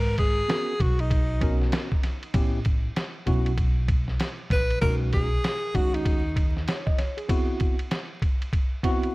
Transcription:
Already playing: upright bass G#1, alto saxophone A#4
0.18 alto saxophone G#4, kick, ride
0.48 tine electric piano B3 C#4 F#4 A#4, snare, hi-hat pedal, ride
0.80 upright bass B1, alto saxophone F#4, kick, ride
0.99 alto saxophone D#4, ride
1.11 kick, ride
1.41 tine electric piano B3 C#4 F#4 A#4, kick, ride
1.62 snare
1.72 snare, hi-hat pedal, ride
1.92 kick
2.03 snare, ride
2.23 ride
2.34 upright bass A1, tine electric piano B3 C#4 E4 G4, kick, ride
2.65 kick, ride
2.96 snare, hi-hat pedal, ride
3.26 upright bass B1, tine electric piano B3 C#4 E4 F#4, kick, ride
3.46 ride
3.58 kick, ride
3.88 kick, ride
4.08 snare
4.20 snare, hi-hat pedal, ride
4.50 upright bass A#1, alto saxophone B4, kick, snare, ride
4.70 ride
4.81 upright bass B1, tine electric piano G#3 C#4 D#4 F#4, alto saxophone A#4, kick, ride
5.13 alto saxophone G#4, kick, ride
5.44 snare, hi-hat pedal, ride
5.74 upright bass D#2, tine electric piano G#3 C#4 D#4 F#4, alto saxophone F#4, kick, ride
5.94 alto saxophone D#4, ride
6.05 kick, ride
6.36 kick, ride
6.57 snare
6.68 tine electric piano C#5, snare, hi-hat pedal, ride
6.87 tine electric piano D#5, kick
6.98 tine electric piano C#5, snare, ride
7.17 tine electric piano G#4, ride
7.29 tine electric piano B3 C4 E4 F#4, kick, ride
7.60 kick, ride
7.79 ride
7.91 snare, hi-hat pedal, ride
8.22 kick, ride
8.42 ride
8.53 kick, ride
8.83 tine electric piano B3 C4 E4 F#4, kick, ride
9.03 ride

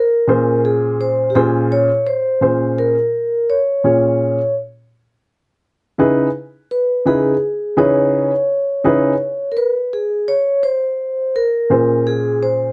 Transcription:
Already playing: vibraphone A#4
0.27 upright piano A#2 C#4 F4 G#4 C5
0.65 vibraphone G#4
1.01 vibraphone C5
1.30 vibraphone G4
1.35 upright piano A#2 C#4 F4 G#4 C5, vibraphone G#4
1.72 vibraphone C#5
2.07 vibraphone C5
2.41 upright piano A#2 C#4 F4 G#4 C5
2.78 vibraphone A#4
3.50 vibraphone C#5
3.84 upright piano A#2 C#4 F4 G#4 C#5
5.98 upright piano C#3 D#4 E4 G#4 B4
6.71 vibraphone B4
7.05 upright piano C#3 D#4 E4 G#4 B4, vibraphone G#4
7.77 upright piano C#3 D#4 E4 G#4 B4, vibraphone C#5
8.84 upright piano C#3 D#4 E4 G#4 B4
9.52 vibraphone A#4
9.57 vibraphone B4
9.93 vibraphone G#4
10.28 vibraphone C#5
10.63 vibraphone C5
11.36 vibraphone A#4
11.70 upright piano A#2 C#4 F4 G#4 C5
12.07 vibraphone G#4
12.43 vibraphone C5

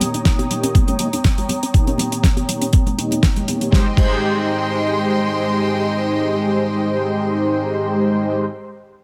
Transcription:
Already playing: analog polysynth A#3 D#4 G4 C#5, violin section C#5 G5 A#5 D#6
0.01 synth arpeggio sound G3, closed hi-hat, high conga
0.14 synth arpeggio sound D#4, closed hi-hat
0.25 synth arpeggio sound G3, kick, snare, closed hi-hat
0.39 synth arpeggio sound G4, closed hi-hat, high conga
0.50 synth arpeggio sound G3, analog polysynth A#3 D#4 G4 C#5, closed hi-hat
0.63 synth arpeggio sound C#4, closed hi-hat
0.75 synth arpeggio sound G3, kick, closed hi-hat, high conga
0.87 synth arpeggio sound C#4, closed hi-hat, low conga
0.99 synth arpeggio sound G3, analog polysynth A#3 D#4 G4 D#5, closed hi-hat
1.13 synth arpeggio sound D#4, closed hi-hat, high conga
1.24 synth arpeggio sound G3, kick, snare, closed hi-hat
1.38 synth arpeggio sound G4, closed hi-hat, low conga
1.49 synth arpeggio sound G3, closed hi-hat, high conga
1.63 synth arpeggio sound C#4, closed hi-hat
1.73 synth arpeggio sound G3, analog polysynth A#3 D#4 G4 C#5, kick, closed hi-hat
1.87 synth arpeggio sound C#4, closed hi-hat
1.98 synth arpeggio sound G3, closed hi-hat, high conga
2.12 synth arpeggio sound D#4, closed hi-hat
2.23 synth arpeggio sound G3, kick, snare, closed hi-hat
2.37 synth arpeggio sound G4, closed hi-hat, high conga
2.48 synth arpeggio sound G3, analog polysynth A#3 D#4 G4 C#5, closed hi-hat
2.62 synth arpeggio sound C#4, closed hi-hat
2.73 synth arpeggio sound G3, kick, closed hi-hat, high conga
2.86 synth arpeggio sound C#4, closed hi-hat, low conga
2.98 analog polysynth A#3 D#4 G4 D#5, synth arpeggio sound D#4, closed hi-hat
3.11 synth arpeggio sound A#3, closed hi-hat, high conga
3.23 synth arpeggio sound A#3, kick, snare, closed hi-hat
3.36 synth arpeggio sound G3, closed hi-hat, low conga
3.47 analog polysynth A#3 D#4 G4 C#5, synth arpeggio sound D#4, closed hi-hat, high conga
3.61 synth arpeggio sound G3, closed hi-hat
3.71 synth arpeggio sound G3, analog polysynth G#3 D#4 G4 C5, violin section G#3 D#5 G5 C6, kick, snare
3.95 synth arpeggio sound G3, analog polysynth G#3 D#4 G4 C5, kick, crash

